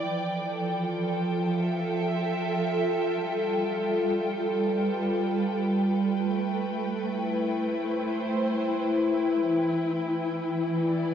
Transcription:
0.00 0.12 E3 medium
0.00 0.12 E4 medium
0.00 1.05 B4 medium
0.00 1.11 D5 medium
0.00 11.14 G5 medium
0.12 3.23 F3 medium
0.36 7.60 A4 medium
0.66 6.36 F4 medium
1.53 4.19 E5 medium
3.23 6.35 G3 medium
4.64 11.14 B4 medium
6.35 9.47 A3 medium
7.12 11.14 E4 medium
7.74 9.46 C5 medium
9.45 11.14 E3 medium
10.87 11.14 D5 medium

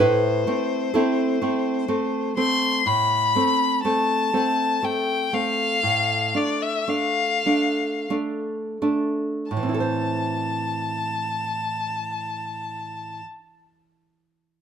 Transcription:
0.00 0.46 A2 soft
0.00 0.91 E4 medium
0.00 0.91 B4 medium
0.00 2.33 C5 soft
0.47 0.91 A3 soft
0.47 0.91 C4 soft
0.94 1.38 A3 soft
0.94 1.38 C4 soft
0.94 1.85 E4 soft
0.94 1.85 A4 soft
1.42 1.85 A3 soft
1.42 1.85 C4 soft
1.88 2.33 A3 soft
1.88 2.33 C4 soft
2.37 2.82 A3 soft
2.37 2.82 C4 soft
2.37 2.88 C6 medium
2.86 3.34 A2 soft
2.86 3.85 B5 medium
3.35 3.81 A3 soft
3.35 3.81 C4 soft
3.85 4.30 A3 soft
3.85 4.30 C4 soft
3.85 4.86 A5 soft
4.33 4.79 A3 soft
4.33 4.79 C4 soft
4.83 5.28 A3 soft
4.83 5.29 C4 soft
4.83 5.36 G5 medium
5.33 5.79 A3 soft
5.33 5.79 C4 soft
5.33 6.38 F5 medium
5.83 6.33 A2 soft
6.34 6.84 A3 soft
6.34 6.84 D4 soft
6.34 6.64 D5 medium
6.62 6.91 E5 medium
6.88 7.42 A3 soft
6.88 7.42 D4 soft
6.88 8.11 F5 medium
7.46 8.06 A3 soft
7.46 8.06 D4 soft
8.10 8.77 A3 soft
8.10 8.77 D4 soft
8.82 9.48 A3 soft
8.82 9.48 D4 soft
9.51 13.20 A2 soft
9.51 13.21 A5 soft
9.57 13.26 E3 soft
9.63 13.32 C4 soft
9.69 13.38 E4 soft
9.74 9.80 A4 soft
9.80 13.49 C5 soft

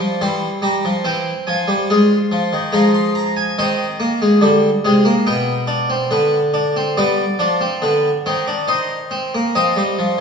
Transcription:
0.00 0.20 F3 medium
0.00 0.17 C4 medium
0.00 1.87 E4 medium
0.00 0.17 G5 medium
0.21 0.47 E3 medium
0.21 0.61 G3 medium
0.21 0.48 C6 medium
0.62 0.83 G3 medium
0.62 0.89 A#5 medium
0.85 1.05 F3 medium
1.04 1.31 E3 medium
1.04 2.70 C4 medium
1.04 1.32 G5 medium
1.47 1.68 F3 medium
1.47 2.70 G#5 medium
1.68 1.89 G3 medium
1.90 2.16 G#3 medium
1.90 3.55 F4 medium
2.32 2.52 F3 medium
2.53 2.73 D#3 medium
2.72 3.56 F3 medium
2.72 3.55 G#3 medium
2.72 2.94 A#5 medium
2.94 3.15 C6 medium
3.15 3.36 A#5 medium
3.36 3.58 G#5 medium
3.58 4.41 D#3 medium
3.58 3.85 C4 medium
3.58 5.23 D#5 medium
4.00 4.21 A#3 medium
4.22 4.43 G#3 medium
4.41 4.68 D3 medium
4.41 4.68 G3 medium
4.85 5.11 C3 medium
4.85 5.05 G#3 medium
5.05 5.26 A#3 medium
5.26 6.09 B2 medium
5.26 5.53 B3 loud
5.26 6.93 G5 medium
5.67 5.89 D4 loud
5.90 6.11 C4 medium
6.11 6.94 D3 medium
6.11 6.38 B3 medium
6.54 6.75 D4 medium
6.76 6.97 C4 medium
6.97 7.24 G3 medium
6.97 7.24 B3 loud
6.97 8.64 D5 medium
7.39 7.66 F3 medium
7.39 7.60 D4 medium
7.61 7.82 C4 medium
7.82 8.09 D3 medium
7.82 8.09 B3 medium
8.26 9.50 D#3 medium
8.26 8.46 C4 medium
8.47 8.68 D4 medium
8.68 8.95 D#4 loud
8.68 9.51 C5 medium
9.11 9.32 C4 medium
9.34 9.54 A#3 medium
9.55 9.75 F3 medium
9.55 10.21 C4 medium
9.55 10.21 D#5 medium
9.76 9.96 G3 medium
9.99 10.18 F3 medium

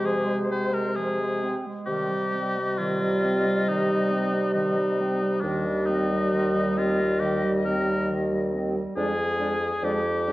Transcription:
0.00 1.56 C3 medium
0.00 0.27 F3 medium
0.00 1.57 G#3 medium
0.00 1.57 C5 medium
0.05 0.38 G#4 medium
0.26 0.51 G#3 medium
0.50 0.74 C4 medium
0.50 0.75 C5 medium
0.72 0.99 G#3 medium
0.72 0.98 A#4 medium
0.96 1.22 F3 medium
0.96 1.60 G#4 medium
1.20 1.45 G#3 medium
1.44 1.68 C4 medium
1.67 1.89 G#3 medium
1.86 5.39 C3 medium
1.86 2.14 D#3 medium
1.86 5.39 G3 medium
1.86 2.80 G4 medium
1.86 5.38 D#5 medium
2.13 2.36 G3 medium
2.35 2.60 C4 medium
2.58 2.82 G3 soft
2.78 3.03 D#3 medium
2.78 3.69 F4 medium
3.02 3.26 G3 medium
3.24 3.47 C4 medium
3.45 3.68 G3 medium
3.68 3.92 D#3 medium
3.68 4.54 D#4 medium
3.90 4.14 G3 medium
4.12 4.36 C4 medium
4.35 4.57 G3 medium
4.54 4.79 D#3 medium
4.54 5.42 D#4 medium
4.78 5.02 G3 medium
5.01 5.24 C4 medium
5.22 5.43 G3 medium
5.41 8.79 D#2 medium
5.41 5.68 D#3 medium
5.41 8.80 G3 medium
5.41 5.88 D4 medium
5.41 8.70 D#5 medium
5.66 5.91 G3 medium
5.86 6.14 C4 medium
5.86 6.79 D#4 medium
6.13 6.36 G3 medium
6.34 6.57 D#3 medium
6.55 6.80 G3 medium
6.78 7.02 C4 medium
6.78 7.21 F4 medium
7.01 7.22 G3 medium
7.20 7.45 D#3 medium
7.20 7.52 G4 medium
7.44 7.67 G3 medium
7.65 7.90 C4 medium
7.65 8.09 A#4 medium
7.89 8.13 G3 medium
8.11 8.34 D#3 medium
8.32 8.55 G3 medium
8.54 8.77 C4 medium
8.76 8.96 G3 medium
8.96 9.73 F2 medium
8.96 9.13 G#3 medium
8.96 9.12 D4 medium
8.96 9.85 G#4 loud
8.96 9.06 D5 medium
9.39 9.56 G#3 medium
9.39 9.56 D4 medium
9.39 9.49 D5 medium
9.82 10.32 F2 medium
9.82 10.00 G#3 medium
9.82 9.99 D4 medium
9.82 10.32 G4 medium
9.82 9.92 D5 medium
10.27 10.32 G#3 medium
10.27 10.32 D4 medium
10.27 10.32 D5 medium

